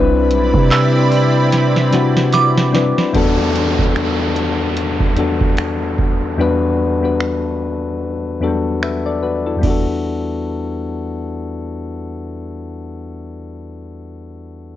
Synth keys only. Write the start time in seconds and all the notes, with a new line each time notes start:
Already playing: G3 C4 D4 E4 B4
1.91 G3 C4 D4 E4 F#4
2.72 G3 C4 D4 E4 B4
3.13 E2 G3 B3 D4 F#4 A4
5.16 E2 G3 B3 D4 F#4 A4
6.37 E2 G3 B3 D4 F#4 B4
7.02 E2 G3 B3 D4 F#4 B4
8.40 E2 F#3 B3 D4 F#4 A4
8.47 G3
8.82 B4 E5
9.06 A4 D5
9.23 F#4 B4
9.46 E4 A4
9.56 E2 G3
9.61 B3 D4
9.67 F#4 A4